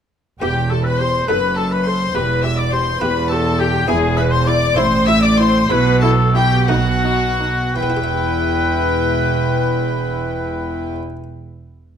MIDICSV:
0, 0, Header, 1, 8, 480
1, 0, Start_track
1, 0, Key_signature, 1, "minor"
1, 0, Tempo, 578035
1, 343, Time_signature, 6, 3, 24, 8
1, 3221, Tempo, 605449
1, 4661, Tempo, 668896
1, 5621, Tempo, 733496
1, 8855, End_track
2, 0, Start_track
2, 0, Title_t, "Violin section"
2, 0, Program_c, 0, 48
2, 341, Note_on_c, 0, 79, 96
2, 566, Note_off_c, 0, 79, 0
2, 582, Note_on_c, 0, 81, 93
2, 703, Note_off_c, 0, 81, 0
2, 706, Note_on_c, 0, 83, 102
2, 822, Note_on_c, 0, 84, 111
2, 823, Note_off_c, 0, 83, 0
2, 1063, Note_off_c, 0, 84, 0
2, 1067, Note_on_c, 0, 83, 101
2, 1300, Note_off_c, 0, 83, 0
2, 1300, Note_on_c, 0, 81, 102
2, 1422, Note_off_c, 0, 81, 0
2, 1426, Note_on_c, 0, 83, 99
2, 1545, Note_off_c, 0, 83, 0
2, 1545, Note_on_c, 0, 84, 118
2, 1780, Note_on_c, 0, 83, 104
2, 1784, Note_off_c, 0, 84, 0
2, 2021, Note_off_c, 0, 83, 0
2, 2022, Note_on_c, 0, 88, 102
2, 2139, Note_off_c, 0, 88, 0
2, 2140, Note_on_c, 0, 86, 102
2, 2260, Note_off_c, 0, 86, 0
2, 2264, Note_on_c, 0, 84, 108
2, 2496, Note_on_c, 0, 83, 113
2, 2501, Note_off_c, 0, 84, 0
2, 2736, Note_on_c, 0, 81, 103
2, 2737, Note_off_c, 0, 83, 0
2, 2977, Note_off_c, 0, 81, 0
2, 2982, Note_on_c, 0, 79, 118
2, 3222, Note_off_c, 0, 79, 0
2, 3225, Note_on_c, 0, 80, 113
2, 3288, Note_off_c, 0, 80, 0
2, 3453, Note_on_c, 0, 83, 112
2, 3500, Note_off_c, 0, 83, 0
2, 3578, Note_on_c, 0, 84, 116
2, 3688, Note_on_c, 0, 86, 127
2, 3689, Note_off_c, 0, 84, 0
2, 3924, Note_off_c, 0, 86, 0
2, 3925, Note_on_c, 0, 84, 127
2, 4163, Note_on_c, 0, 88, 124
2, 4165, Note_off_c, 0, 84, 0
2, 4286, Note_off_c, 0, 88, 0
2, 4290, Note_on_c, 0, 86, 127
2, 4409, Note_on_c, 0, 84, 127
2, 4412, Note_off_c, 0, 86, 0
2, 4660, Note_off_c, 0, 84, 0
2, 4660, Note_on_c, 0, 83, 119
2, 4890, Note_on_c, 0, 81, 113
2, 4892, Note_off_c, 0, 83, 0
2, 4948, Note_off_c, 0, 81, 0
2, 5126, Note_on_c, 0, 79, 127
2, 5365, Note_off_c, 0, 79, 0
2, 5366, Note_on_c, 0, 78, 121
2, 6078, Note_off_c, 0, 78, 0
2, 6090, Note_on_c, 0, 79, 100
2, 8180, Note_off_c, 0, 79, 0
2, 8855, End_track
3, 0, Start_track
3, 0, Title_t, "Oboe"
3, 0, Program_c, 1, 68
3, 342, Note_on_c, 1, 67, 91
3, 580, Note_on_c, 1, 69, 82
3, 593, Note_off_c, 1, 67, 0
3, 701, Note_on_c, 1, 71, 88
3, 713, Note_off_c, 1, 69, 0
3, 825, Note_on_c, 1, 72, 88
3, 837, Note_off_c, 1, 71, 0
3, 1060, Note_on_c, 1, 71, 89
3, 1073, Note_off_c, 1, 72, 0
3, 1304, Note_on_c, 1, 69, 78
3, 1317, Note_off_c, 1, 71, 0
3, 1422, Note_on_c, 1, 71, 83
3, 1435, Note_off_c, 1, 69, 0
3, 1537, Note_off_c, 1, 71, 0
3, 1542, Note_on_c, 1, 72, 92
3, 1784, Note_on_c, 1, 71, 93
3, 1796, Note_off_c, 1, 72, 0
3, 2018, Note_off_c, 1, 71, 0
3, 2023, Note_on_c, 1, 76, 95
3, 2142, Note_on_c, 1, 74, 92
3, 2155, Note_off_c, 1, 76, 0
3, 2257, Note_off_c, 1, 74, 0
3, 2262, Note_on_c, 1, 72, 97
3, 2495, Note_off_c, 1, 72, 0
3, 2500, Note_on_c, 1, 71, 93
3, 2608, Note_off_c, 1, 71, 0
3, 2738, Note_on_c, 1, 69, 96
3, 2982, Note_on_c, 1, 67, 96
3, 2994, Note_off_c, 1, 69, 0
3, 3217, Note_off_c, 1, 67, 0
3, 3222, Note_on_c, 1, 68, 100
3, 3452, Note_on_c, 1, 71, 96
3, 3464, Note_off_c, 1, 68, 0
3, 3569, Note_on_c, 1, 72, 100
3, 3581, Note_off_c, 1, 71, 0
3, 3689, Note_on_c, 1, 74, 100
3, 3701, Note_off_c, 1, 72, 0
3, 3920, Note_off_c, 1, 74, 0
3, 3924, Note_on_c, 1, 72, 100
3, 4167, Note_on_c, 1, 76, 102
3, 4179, Note_off_c, 1, 72, 0
3, 4291, Note_on_c, 1, 74, 97
3, 4303, Note_off_c, 1, 76, 0
3, 4413, Note_on_c, 1, 72, 108
3, 4425, Note_off_c, 1, 74, 0
3, 4660, Note_off_c, 1, 72, 0
3, 4664, Note_on_c, 1, 71, 112
3, 4896, Note_on_c, 1, 69, 96
3, 4906, Note_off_c, 1, 71, 0
3, 5133, Note_on_c, 1, 67, 90
3, 5144, Note_off_c, 1, 69, 0
3, 5374, Note_on_c, 1, 66, 93
3, 5385, Note_off_c, 1, 67, 0
3, 6092, Note_off_c, 1, 66, 0
3, 6096, Note_on_c, 1, 71, 92
3, 8187, Note_off_c, 1, 71, 0
3, 8855, End_track
4, 0, Start_track
4, 0, Title_t, "Violin section"
4, 0, Program_c, 2, 48
4, 342, Note_on_c, 2, 67, 87
4, 566, Note_off_c, 2, 67, 0
4, 578, Note_on_c, 2, 69, 78
4, 695, Note_on_c, 2, 71, 89
4, 699, Note_off_c, 2, 69, 0
4, 820, Note_off_c, 2, 71, 0
4, 823, Note_on_c, 2, 72, 92
4, 1063, Note_off_c, 2, 72, 0
4, 1063, Note_on_c, 2, 71, 97
4, 1298, Note_off_c, 2, 71, 0
4, 1301, Note_on_c, 2, 69, 83
4, 1420, Note_off_c, 2, 69, 0
4, 1421, Note_on_c, 2, 71, 79
4, 1538, Note_on_c, 2, 72, 90
4, 1540, Note_off_c, 2, 71, 0
4, 1776, Note_on_c, 2, 71, 103
4, 1780, Note_off_c, 2, 72, 0
4, 2019, Note_off_c, 2, 71, 0
4, 2020, Note_on_c, 2, 76, 88
4, 2138, Note_on_c, 2, 74, 83
4, 2141, Note_off_c, 2, 76, 0
4, 2259, Note_off_c, 2, 74, 0
4, 2261, Note_on_c, 2, 72, 87
4, 2498, Note_on_c, 2, 71, 95
4, 2500, Note_off_c, 2, 72, 0
4, 2733, Note_off_c, 2, 71, 0
4, 2738, Note_on_c, 2, 69, 99
4, 2978, Note_off_c, 2, 69, 0
4, 2978, Note_on_c, 2, 67, 88
4, 3220, Note_off_c, 2, 67, 0
4, 3221, Note_on_c, 2, 68, 102
4, 3448, Note_off_c, 2, 68, 0
4, 3452, Note_on_c, 2, 71, 101
4, 3568, Note_on_c, 2, 72, 100
4, 3569, Note_off_c, 2, 71, 0
4, 3686, Note_off_c, 2, 72, 0
4, 3688, Note_on_c, 2, 74, 109
4, 3924, Note_off_c, 2, 74, 0
4, 3928, Note_on_c, 2, 72, 113
4, 4165, Note_on_c, 2, 76, 119
4, 4167, Note_off_c, 2, 72, 0
4, 4286, Note_on_c, 2, 74, 106
4, 4287, Note_off_c, 2, 76, 0
4, 4407, Note_off_c, 2, 74, 0
4, 4413, Note_on_c, 2, 72, 102
4, 4662, Note_off_c, 2, 72, 0
4, 4664, Note_on_c, 2, 71, 118
4, 4892, Note_on_c, 2, 69, 86
4, 4894, Note_off_c, 2, 71, 0
4, 5124, Note_off_c, 2, 69, 0
4, 5132, Note_on_c, 2, 67, 101
4, 5368, Note_off_c, 2, 67, 0
4, 5376, Note_on_c, 2, 66, 95
4, 6095, Note_on_c, 2, 71, 91
4, 6097, Note_off_c, 2, 66, 0
4, 8185, Note_off_c, 2, 71, 0
4, 8855, End_track
5, 0, Start_track
5, 0, Title_t, "Viola section"
5, 0, Program_c, 3, 48
5, 344, Note_on_c, 3, 67, 81
5, 410, Note_off_c, 3, 67, 0
5, 581, Note_on_c, 3, 67, 68
5, 647, Note_off_c, 3, 67, 0
5, 819, Note_on_c, 3, 67, 60
5, 885, Note_off_c, 3, 67, 0
5, 1059, Note_on_c, 3, 69, 75
5, 1125, Note_off_c, 3, 69, 0
5, 1297, Note_on_c, 3, 69, 62
5, 1363, Note_off_c, 3, 69, 0
5, 1541, Note_on_c, 3, 69, 71
5, 1607, Note_off_c, 3, 69, 0
5, 1779, Note_on_c, 3, 67, 79
5, 1845, Note_off_c, 3, 67, 0
5, 2017, Note_on_c, 3, 67, 74
5, 2084, Note_off_c, 3, 67, 0
5, 2261, Note_on_c, 3, 67, 65
5, 2328, Note_off_c, 3, 67, 0
5, 2500, Note_on_c, 3, 67, 71
5, 2566, Note_off_c, 3, 67, 0
5, 2738, Note_on_c, 3, 67, 67
5, 2804, Note_off_c, 3, 67, 0
5, 2979, Note_on_c, 3, 67, 67
5, 3046, Note_off_c, 3, 67, 0
5, 3222, Note_on_c, 3, 64, 82
5, 3285, Note_off_c, 3, 64, 0
5, 3453, Note_on_c, 3, 64, 70
5, 3516, Note_off_c, 3, 64, 0
5, 3687, Note_on_c, 3, 64, 70
5, 3750, Note_off_c, 3, 64, 0
5, 3925, Note_on_c, 3, 64, 91
5, 3988, Note_off_c, 3, 64, 0
5, 4168, Note_on_c, 3, 64, 77
5, 4231, Note_off_c, 3, 64, 0
5, 4413, Note_on_c, 3, 64, 71
5, 4477, Note_off_c, 3, 64, 0
5, 4660, Note_on_c, 3, 64, 91
5, 4717, Note_off_c, 3, 64, 0
5, 4894, Note_on_c, 3, 64, 87
5, 4952, Note_off_c, 3, 64, 0
5, 5127, Note_on_c, 3, 64, 74
5, 5184, Note_off_c, 3, 64, 0
5, 5369, Note_on_c, 3, 63, 89
5, 5427, Note_off_c, 3, 63, 0
5, 5621, Note_on_c, 3, 63, 69
5, 5673, Note_off_c, 3, 63, 0
5, 5857, Note_on_c, 3, 63, 67
5, 5910, Note_off_c, 3, 63, 0
5, 6098, Note_on_c, 3, 64, 82
5, 8188, Note_off_c, 3, 64, 0
5, 8855, End_track
6, 0, Start_track
6, 0, Title_t, "Harpsichord"
6, 0, Program_c, 4, 6
6, 346, Note_on_c, 4, 40, 69
6, 346, Note_on_c, 4, 59, 54
6, 351, Note_on_c, 4, 64, 52
6, 357, Note_on_c, 4, 67, 50
6, 961, Note_off_c, 4, 40, 0
6, 1033, Note_off_c, 4, 59, 0
6, 1035, Note_off_c, 4, 64, 0
6, 1038, Note_off_c, 4, 67, 0
6, 1067, Note_on_c, 4, 42, 60
6, 1068, Note_on_c, 4, 59, 53
6, 1072, Note_on_c, 4, 63, 46
6, 1078, Note_on_c, 4, 69, 54
6, 1679, Note_off_c, 4, 42, 0
6, 1752, Note_off_c, 4, 59, 0
6, 1754, Note_off_c, 4, 63, 0
6, 1757, Note_off_c, 4, 69, 0
6, 1785, Note_on_c, 4, 40, 66
6, 2396, Note_off_c, 4, 40, 0
6, 2501, Note_on_c, 4, 59, 53
6, 2502, Note_on_c, 4, 40, 67
6, 2504, Note_on_c, 4, 64, 58
6, 2507, Note_on_c, 4, 67, 55
6, 3020, Note_off_c, 4, 59, 0
6, 3022, Note_off_c, 4, 64, 0
6, 3023, Note_off_c, 4, 67, 0
6, 3116, Note_off_c, 4, 40, 0
6, 3221, Note_on_c, 4, 40, 75
6, 3221, Note_on_c, 4, 59, 63
6, 3226, Note_on_c, 4, 62, 59
6, 3231, Note_on_c, 4, 64, 58
6, 3821, Note_off_c, 4, 40, 0
6, 3892, Note_off_c, 4, 59, 0
6, 3895, Note_off_c, 4, 62, 0
6, 3897, Note_off_c, 4, 64, 0
6, 3924, Note_on_c, 4, 57, 60
6, 3925, Note_on_c, 4, 45, 74
6, 3929, Note_on_c, 4, 60, 61
6, 3935, Note_on_c, 4, 64, 60
6, 4554, Note_off_c, 4, 45, 0
6, 4629, Note_off_c, 4, 57, 0
6, 4631, Note_off_c, 4, 60, 0
6, 4634, Note_off_c, 4, 64, 0
6, 4661, Note_on_c, 4, 47, 76
6, 4665, Note_on_c, 4, 64, 70
6, 4670, Note_on_c, 4, 67, 60
6, 5269, Note_off_c, 4, 47, 0
6, 5345, Note_off_c, 4, 64, 0
6, 5347, Note_off_c, 4, 67, 0
6, 5371, Note_on_c, 4, 47, 72
6, 5371, Note_on_c, 4, 57, 58
6, 5376, Note_on_c, 4, 63, 59
6, 5380, Note_on_c, 4, 66, 55
6, 5996, Note_off_c, 4, 47, 0
6, 6068, Note_off_c, 4, 57, 0
6, 6071, Note_off_c, 4, 63, 0
6, 6072, Note_off_c, 4, 66, 0
6, 6096, Note_on_c, 4, 52, 73
6, 6141, Note_on_c, 4, 59, 75
6, 6187, Note_on_c, 4, 64, 77
6, 6232, Note_on_c, 4, 67, 68
6, 6278, Note_on_c, 4, 76, 74
6, 8186, Note_off_c, 4, 52, 0
6, 8231, Note_off_c, 4, 59, 0
6, 8278, Note_off_c, 4, 64, 0
6, 8322, Note_off_c, 4, 67, 0
6, 8368, Note_off_c, 4, 76, 0
6, 8855, End_track
7, 0, Start_track
7, 0, Title_t, "Cello section"
7, 0, Program_c, 5, 48
7, 345, Note_on_c, 5, 40, 80
7, 981, Note_off_c, 5, 40, 0
7, 1068, Note_on_c, 5, 42, 97
7, 1700, Note_off_c, 5, 42, 0
7, 1785, Note_on_c, 5, 40, 90
7, 2416, Note_off_c, 5, 40, 0
7, 2501, Note_on_c, 5, 40, 108
7, 3136, Note_off_c, 5, 40, 0
7, 3220, Note_on_c, 5, 40, 106
7, 3839, Note_off_c, 5, 40, 0
7, 3924, Note_on_c, 5, 45, 99
7, 4572, Note_off_c, 5, 45, 0
7, 4663, Note_on_c, 5, 47, 113
7, 5286, Note_off_c, 5, 47, 0
7, 5375, Note_on_c, 5, 47, 105
7, 6012, Note_off_c, 5, 47, 0
7, 6097, Note_on_c, 5, 40, 84
7, 8187, Note_off_c, 5, 40, 0
7, 8855, End_track
8, 0, Start_track
8, 0, Title_t, "Double bass section"
8, 0, Program_c, 6, 48
8, 343, Note_on_c, 6, 28, 89
8, 979, Note_off_c, 6, 28, 0
8, 1065, Note_on_c, 6, 30, 82
8, 1699, Note_off_c, 6, 30, 0
8, 1781, Note_on_c, 6, 28, 90
8, 2414, Note_off_c, 6, 28, 0
8, 2499, Note_on_c, 6, 28, 97
8, 3135, Note_off_c, 6, 28, 0
8, 3220, Note_on_c, 6, 28, 112
8, 3839, Note_off_c, 6, 28, 0
8, 3922, Note_on_c, 6, 33, 101
8, 4571, Note_off_c, 6, 33, 0
8, 4658, Note_on_c, 6, 35, 98
8, 5284, Note_off_c, 6, 35, 0
8, 5369, Note_on_c, 6, 35, 103
8, 6009, Note_off_c, 6, 35, 0
8, 6094, Note_on_c, 6, 28, 92
8, 8184, Note_off_c, 6, 28, 0
8, 8855, End_track
0, 0, End_of_file